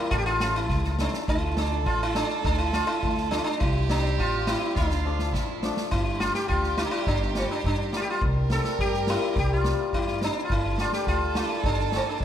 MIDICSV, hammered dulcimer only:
0, 0, Header, 1, 2, 480
1, 0, Start_track
1, 0, Tempo, 580271
1, 96, Time_signature, 2, 2, 24, 8
1, 5375, Tempo, 570342
1, 10212, End_track
2, 0, Start_track
2, 0, Title_t, "Hammered dulcimer"
2, 0, Program_c, 0, 15
2, 0, Note_on_c, 0, 55, 66
2, 137, Note_off_c, 0, 55, 0
2, 341, Note_on_c, 0, 57, 64
2, 354, Note_on_c, 0, 61, 56
2, 354, Note_on_c, 0, 64, 80
2, 460, Note_off_c, 0, 57, 0
2, 466, Note_off_c, 0, 64, 0
2, 467, Note_off_c, 0, 61, 0
2, 818, Note_on_c, 0, 57, 67
2, 825, Note_on_c, 0, 61, 56
2, 832, Note_on_c, 0, 64, 75
2, 940, Note_off_c, 0, 57, 0
2, 944, Note_off_c, 0, 61, 0
2, 947, Note_off_c, 0, 64, 0
2, 1307, Note_on_c, 0, 57, 65
2, 1313, Note_on_c, 0, 62, 57
2, 1319, Note_on_c, 0, 65, 63
2, 1425, Note_off_c, 0, 57, 0
2, 1428, Note_off_c, 0, 62, 0
2, 1431, Note_off_c, 0, 65, 0
2, 1777, Note_on_c, 0, 57, 70
2, 1781, Note_on_c, 0, 62, 64
2, 1787, Note_on_c, 0, 65, 71
2, 1901, Note_off_c, 0, 57, 0
2, 1903, Note_off_c, 0, 62, 0
2, 1906, Note_off_c, 0, 65, 0
2, 2266, Note_on_c, 0, 57, 68
2, 2273, Note_on_c, 0, 62, 58
2, 2274, Note_on_c, 0, 65, 69
2, 2385, Note_off_c, 0, 57, 0
2, 2389, Note_off_c, 0, 62, 0
2, 2390, Note_off_c, 0, 65, 0
2, 2745, Note_on_c, 0, 57, 68
2, 2755, Note_on_c, 0, 62, 70
2, 2758, Note_on_c, 0, 65, 78
2, 2865, Note_off_c, 0, 57, 0
2, 2870, Note_off_c, 0, 62, 0
2, 2871, Note_off_c, 0, 65, 0
2, 3222, Note_on_c, 0, 55, 71
2, 3231, Note_on_c, 0, 60, 66
2, 3236, Note_on_c, 0, 64, 72
2, 3347, Note_off_c, 0, 60, 0
2, 3350, Note_off_c, 0, 64, 0
2, 3691, Note_off_c, 0, 55, 0
2, 3701, Note_on_c, 0, 55, 67
2, 3709, Note_on_c, 0, 60, 56
2, 3710, Note_on_c, 0, 64, 77
2, 3826, Note_off_c, 0, 60, 0
2, 3826, Note_off_c, 0, 64, 0
2, 3983, Note_off_c, 0, 55, 0
2, 4178, Note_on_c, 0, 53, 61
2, 4182, Note_on_c, 0, 57, 62
2, 4192, Note_on_c, 0, 62, 70
2, 4301, Note_off_c, 0, 57, 0
2, 4306, Note_off_c, 0, 62, 0
2, 4645, Note_off_c, 0, 53, 0
2, 4654, Note_on_c, 0, 53, 80
2, 4664, Note_on_c, 0, 57, 76
2, 4669, Note_on_c, 0, 62, 91
2, 4780, Note_off_c, 0, 57, 0
2, 4783, Note_off_c, 0, 62, 0
2, 4938, Note_off_c, 0, 53, 0
2, 5132, Note_on_c, 0, 55, 65
2, 5136, Note_on_c, 0, 58, 55
2, 5141, Note_on_c, 0, 62, 61
2, 5254, Note_off_c, 0, 58, 0
2, 5257, Note_off_c, 0, 62, 0
2, 5600, Note_off_c, 0, 55, 0
2, 5610, Note_on_c, 0, 55, 67
2, 5617, Note_on_c, 0, 58, 59
2, 5623, Note_on_c, 0, 62, 70
2, 5737, Note_off_c, 0, 58, 0
2, 5740, Note_off_c, 0, 62, 0
2, 6084, Note_off_c, 0, 55, 0
2, 6094, Note_on_c, 0, 55, 64
2, 6094, Note_on_c, 0, 58, 58
2, 6106, Note_on_c, 0, 65, 77
2, 6217, Note_off_c, 0, 58, 0
2, 6223, Note_off_c, 0, 65, 0
2, 6564, Note_off_c, 0, 55, 0
2, 6574, Note_on_c, 0, 55, 67
2, 6576, Note_on_c, 0, 58, 54
2, 6583, Note_on_c, 0, 64, 70
2, 6699, Note_off_c, 0, 58, 0
2, 6702, Note_off_c, 0, 64, 0
2, 6864, Note_off_c, 0, 55, 0
2, 7061, Note_on_c, 0, 55, 55
2, 7068, Note_on_c, 0, 60, 63
2, 7075, Note_on_c, 0, 64, 71
2, 7185, Note_off_c, 0, 60, 0
2, 7189, Note_off_c, 0, 64, 0
2, 7535, Note_off_c, 0, 55, 0
2, 7545, Note_on_c, 0, 55, 65
2, 7556, Note_on_c, 0, 60, 59
2, 7560, Note_on_c, 0, 64, 70
2, 7670, Note_off_c, 0, 60, 0
2, 7672, Note_off_c, 0, 64, 0
2, 8013, Note_off_c, 0, 55, 0
2, 8024, Note_on_c, 0, 55, 68
2, 8035, Note_on_c, 0, 60, 58
2, 8042, Note_on_c, 0, 64, 60
2, 8149, Note_off_c, 0, 60, 0
2, 8153, Note_off_c, 0, 64, 0
2, 8498, Note_off_c, 0, 55, 0
2, 8508, Note_on_c, 0, 55, 65
2, 8513, Note_on_c, 0, 60, 58
2, 8522, Note_on_c, 0, 64, 69
2, 8628, Note_off_c, 0, 60, 0
2, 8632, Note_off_c, 0, 64, 0
2, 8785, Note_off_c, 0, 55, 0
2, 8989, Note_on_c, 0, 55, 69
2, 8992, Note_on_c, 0, 58, 50
2, 9000, Note_on_c, 0, 62, 67
2, 9106, Note_off_c, 0, 58, 0
2, 9111, Note_off_c, 0, 62, 0
2, 9452, Note_off_c, 0, 55, 0
2, 9462, Note_on_c, 0, 55, 64
2, 9469, Note_on_c, 0, 58, 57
2, 9477, Note_on_c, 0, 62, 69
2, 9584, Note_off_c, 0, 58, 0
2, 9588, Note_off_c, 0, 62, 0
2, 9925, Note_off_c, 0, 55, 0
2, 9935, Note_on_c, 0, 55, 59
2, 9946, Note_on_c, 0, 58, 55
2, 9952, Note_on_c, 0, 64, 68
2, 10061, Note_off_c, 0, 58, 0
2, 10063, Note_off_c, 0, 64, 0
2, 10212, Note_off_c, 0, 55, 0
2, 10212, End_track
0, 0, End_of_file